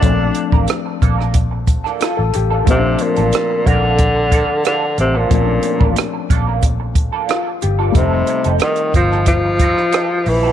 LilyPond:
<<
  \new Staff \with { instrumentName = "Clean electric guitar" } { \time 4/4 \key bes \major \tempo 4 = 91 <bes d' a'>16 r8 <bes d' bes'>16 r8 <bes d' a'>16 <bes d' bes'>16 r8. <bes d' a'>16 <bes d' a'>16 r8 <bes d' a'>16 | <bes d' a'>16 r8 <bes d' a'>16 r8 <bes d' bes'>16 <bes d' a'>16 r8 <bes d' a'>16 r16 <bes d' a'>16 r8 <bes d' a'>16 | <bes d' a'>16 r8 <bes d' bes'>16 r8 <bes d' a'>16 <bes d' bes'>16 r8. <bes d' a'>16 <bes d' a'>16 r8 <bes d' a'>16 | <c' ees' a'>16 r8 <c' ees' a'>16 r8 <c' ees' c''>16 <c' ees' a'>16 r8 <c' ees' a'>16 r16 <c' ees' a'>16 r8 <c' ees' a'>16 | }
  \new Staff \with { instrumentName = "Grand piano" } { \time 4/4 \key bes \major << { r2. f'16 a'16 g'16 a'16~ | a'16 r2. r8. | r2. f'8 g'16 f'16~ | f'16 r2. r8. | } \\ { <f a c' d'>1 | <f a c' des' d'>1 | <f a c' des' d'>1 | <g a c' ees'>1 | } >> }
  \new Staff \with { instrumentName = "Tenor saxophone" } { \clef bass \time 4/4 \key bes \major d'4 r2. | c8 bes,4 d4. d8 c16 bes,16~ | bes,4~ bes,16 r2 r8. | c4 ees8 f8 f4. e8 | }
  \new Staff \with { instrumentName = "Fingered electric bass" } { \clef bass \time 4/4 \key bes \major bes,,8 r16 a,,16 r8 bes,,4~ bes,,16 r8 a,,16 a,,8 | bes,,8 r16 a,,16 r8 bes,,4~ bes,,16 r8. a,,8 | bes,,8 r16 a,,16 r8 bes,,4~ bes,,16 r8. g,,8 | f,,8 r16 f,,16 r8 g,,4~ g,,16 r8. bes,,8 | }
  \new DrumStaff \with { instrumentName = "Drums" } \drummode { \time 4/4 <hh bd>8 hh16 bd16 <hh ss>8 <hh bd>16 ss16 <hh bd>8 <hh bd>16 ss16 <hh ss>8 hh8 | <hh bd>8 hh16 hh16 <hh ss>8 <hh bd>8 <hh bd>8 <hh bd>8 <hh ss>8 hh8 | <hh bd>8 hh16 bd16 <hh ss>8 <hh bd>8 <hh bd>8 <hh bd>8 <hh ss>8 hh8 | <hh bd>8 hh16 hh16 <hh ss>16 hh16 <hh bd>16 ss16 <hh bd>8 <hh bd>16 ss16 <hh ss>8 hho8 | }
>>